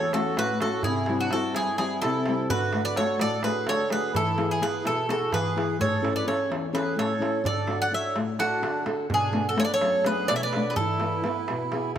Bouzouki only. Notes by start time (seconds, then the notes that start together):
Already playing: C#5
0.14 A4
0.39 B4
0.62 A4
0.84 G#4
1.21 F#4
1.33 A4
1.56 G#4
1.78 G#4
2.02 A4
2.50 B4
2.85 D5
2.97 C#5
3.21 D5
3.44 B4
3.69 C#5
3.92 B4
4.16 A4
4.51 G#4
4.63 B4
4.87 A4
5.10 A4
5.34 B4
5.81 C#5
6.16 D5
6.28 C#5
6.75 B4
6.99 C#5
7.46 D5
7.82 F#5
7.94 E5
8.40 F#4
9.14 G#4
9.49 A4
9.60 C#5
9.65 D5
9.74 C#5
10.06 B4
10.28 D5
10.36 E5
10.43 D5
10.70 B4
10.76 A4